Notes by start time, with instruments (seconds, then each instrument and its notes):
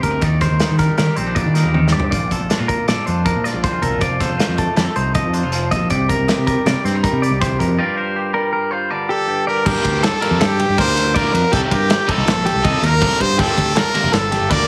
Already playing: clean electric guitar C3 G3 D#4
0.01 fingered electric bass D2, clean electric guitar G4 A#4, kick, closed hi-hat
0.11 clean electric guitar A#4
0.20 fingered electric bass D#2, clean electric guitar D#3 D#4 D5, kick, closed hi-hat
0.41 clean electric guitar A#4 C5, kick, snare, closed hi-hat
0.51 fingered electric bass D#2
0.60 clean electric guitar D#4, snare, closed hi-hat
0.71 fingered electric bass D#3
0.79 clean electric guitar G3 A#4, kick, snare, closed hi-hat
0.98 fingered electric bass D#3, clean electric guitar G4 A#4, snare, closed hi-hat
1.16 fingered electric bass A#1, clean electric guitar C4 C5, closed hi-hat
1.27 clean electric guitar D4
1.35 clean electric guitar A#2 D5, kick, closed hi-hat
1.46 fingered electric bass D#3
1.54 clean electric guitar D#4 A#4, snare, closed hi-hat
1.65 fingered electric bass D#2
1.74 clean electric guitar D#3 D#4, high tom
1.88 snare
1.93 fingered electric bass G2, clean electric guitar G4 D5
2.00 floor tom
2.11 fingered electric bass A#1, clean electric guitar A#2 F4 D5, kick, closed hi-hat
2.31 clean electric guitar A4, kick, closed hi-hat
2.40 fingered electric bass A#1
2.50 clean electric guitar D4, snare, closed hi-hat
2.59 fingered electric bass A#2, clean electric guitar F4
2.68 clean electric guitar A#3 A#4, kick, closed hi-hat
2.88 fingered electric bass A#2, clean electric guitar A4 D5, snare, closed hi-hat
3.06 fingered electric bass F2, clean electric guitar D4 C5, closed hi-hat
3.25 clean electric guitar F3 A#4, kick, closed hi-hat
3.35 fingered electric bass A#2
3.44 clean electric guitar F4 D5, snare, closed hi-hat
3.54 fingered electric bass A#1
3.63 clean electric guitar A#2 D4 C5, kick, snare, closed hi-hat
3.72 clean electric guitar F4
3.82 fingered electric bass C2, clean electric guitar A4 A#4, kick, closed hi-hat
4.00 fingered electric bass F1, clean electric guitar F3 F4 D5, kick, closed hi-hat
4.20 clean electric guitar A4 C5, kick, snare, closed hi-hat
4.29 fingered electric bass F1
4.38 clean electric guitar F4, snare, closed hi-hat
4.48 fingered electric bass F2
4.57 clean electric guitar A3 A4, kick, closed hi-hat
4.76 fingered electric bass F2, clean electric guitar G4 A4, snare, closed hi-hat
4.85 clean electric guitar A4
4.96 fingered electric bass C2, clean electric guitar D#4 C5, closed hi-hat
5.14 clean electric guitar F3 D#5, kick, closed hi-hat
5.24 fingered electric bass F2
5.33 clean electric guitar D4 C5, closed hi-hat
5.43 fingered electric bass F1, clean electric guitar F4
5.52 clean electric guitar F3 F4, closed hi-hat
5.71 fingered electric bass A#1, clean electric guitar A4 D#5, kick, snare, closed hi-hat
5.90 fingered electric bass C2, clean electric guitar C3 G4 D5, kick, closed hi-hat
6.09 clean electric guitar A#4, kick, closed hi-hat
6.19 fingered electric bass C2
6.28 clean electric guitar G4, snare, closed hi-hat
6.38 fingered electric bass C3
6.47 clean electric guitar G3 A#4, kick, closed hi-hat
6.65 fingered electric bass C3, clean electric guitar A#4 D5, snare, closed hi-hat
6.84 fingered electric bass G2, clean electric guitar C4 C5, snare, closed hi-hat
6.95 clean electric guitar D#4
7.03 clean electric guitar G3 A#4, kick, closed hi-hat
7.12 fingered electric bass C3
7.22 clean electric guitar G4 D5, closed hi-hat
7.31 fingered electric bass C2
7.40 clean electric guitar C3 G4 C5, kick, snare, closed hi-hat
7.59 fingered electric bass F2, clean electric guitar A#4, kick, closed hi-hat
7.78 clean electric guitar G2 G3 F4 G4 A#4 D5
7.97 clean electric guitar A#4 C5
8.16 clean electric guitar G4
8.34 clean electric guitar G3 A#4
8.53 clean electric guitar A#4
8.71 clean electric guitar F4 C5
8.91 clean electric guitar D3 D5
9.09 clean electric guitar G4, trumpet A4
9.27 clean electric guitar G2 G4
9.47 clean electric guitar G4 D5, trumpet A#4
9.56 clean electric guitar A#4
9.65 fingered electric bass G2, overdriven electric guitar D3 G3 A#3 D4, trumpet G4, clean electric guitar A#4, kick, crash
9.84 fingered electric bass D2, muted overdriven electric guitar stroke, kick, snare, ride
10.03 clean electric guitar A4, trumpet A4, muted overdriven electric guitar stroke, snare, ride
10.22 overdriven electric guitar D3 G3 A#3 D4, clean electric guitar A#4, snare, ride
10.31 fingered electric bass F2
10.40 fingered electric bass G2, trumpet G4, clean electric guitar A4, muted overdriven electric guitar stroke, snare, ride
10.59 clean electric guitar G4, muted overdriven electric guitar stroke, ride
10.69 fingered electric bass G2
10.78 fingered electric bass D2, overdriven electric guitar D3 G3 A#3 D4, clean electric guitar A#4, trumpet C5, kick, ride
10.97 muted overdriven electric guitar stroke, snare, ride
11.14 overdriven electric guitar D3 G3 A#3 D4, trumpet A#4, clean electric guitar D5, kick, snare, ride
11.33 fingered electric bass F2, clean electric guitar A#4, muted overdriven electric guitar stroke, ride
11.52 fingered electric bass C2, overdriven electric guitar C3 G3 C4 D#4, clean electric guitar G4, trumpet A4, kick, ride
11.71 fingered electric bass G2, trumpet G4, clean electric guitar A#4, muted overdriven electric guitar stroke, kick, ride
11.90 clean electric guitar G4, muted overdriven electric guitar stroke, snare, ride
12.08 overdriven electric guitar C3 G3 C4 D#4, clean electric guitar A4, trumpet A4, kick, ride
12.18 fingered electric bass C2
12.27 fingered electric bass A#1, muted overdriven electric guitar stroke, snare, ride
12.44 clean electric guitar G4, muted overdriven electric guitar stroke, snare, ride
12.54 fingered electric bass C2
12.62 fingered electric bass C2, overdriven electric guitar C3 G3 C4 D#4, clean electric guitar D#5, kick, ride
12.82 fingered electric bass D#2, clean electric guitar A#4, trumpet A#4, muted overdriven electric guitar stroke, snare, ride
13.01 fingered electric bass C2, overdriven electric guitar C3 G3 C4 D#4, clean electric guitar A4, kick, snare, ride
13.19 fingered electric bass G2, clean electric guitar G4, trumpet C5, muted overdriven electric guitar stroke, kick, ride
13.38 fingered electric bass G1, overdriven electric guitar D3 G3 A#3 D4, clean electric guitar G4, trumpet A4, kick, crash
13.57 fingered electric bass D2, muted overdriven electric guitar stroke, kick, ride
13.76 clean electric guitar A4, trumpet A#4, muted overdriven electric guitar stroke, snare, ride
13.94 overdriven electric guitar D3 G3 A#3 D4, clean electric guitar A#4, snare, ride
14.03 fingered electric bass F1
14.12 fingered electric bass G1, clean electric guitar A4, trumpet A4, muted overdriven electric guitar stroke, snare, ride
14.31 clean electric guitar G4, muted overdriven electric guitar stroke, snare, ride
14.41 fingered electric bass G1
14.50 fingered electric bass D2, overdriven electric guitar D3 G3 A#3 D4, clean electric guitar A#4, trumpet D5, kick, ride